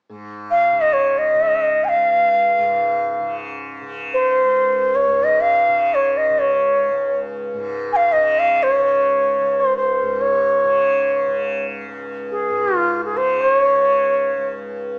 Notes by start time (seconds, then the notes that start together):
0.09 G#2
0.50 F5
0.72 C#3
0.81 D#5
0.93 C#5
1.18 D#5
1.34 C#3
1.84 G#5
1.88 F5
1.96 C#2
2.58 G#2
3.20 C#3
3.82 C#3
4.13 C5
4.44 C#2
4.95 C#5
5.07 G#2
5.24 D#5
5.40 F5
5.69 C#3
5.94 C#5
6.17 D#5
6.30 C#3
6.39 C#5
6.91 C#2
7.53 G#2
7.92 F5 G#5
8.12 D#5
8.17 C#3
8.39 F5
8.63 C#5
8.78 C#3
9.41 C#2
9.60 C5
9.77 C5
10.02 G#2
10.21 C#5
10.64 C#3
11.26 C#3
11.88 C#2
12.31 G#4
12.49 G#2
12.77 F4
13.05 G#4
13.13 C#3 C5
13.41 C#5
13.75 C#3
14.37 C#2